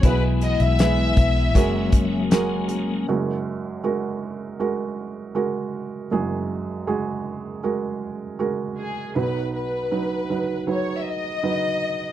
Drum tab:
HH |x-xxx-x-x-x-x-x-|----------------|----------------|----------------|
SD |----o-------o---|----------------|----------------|----------------|
BD |o-----o-o-o-----|----------------|----------------|----------------|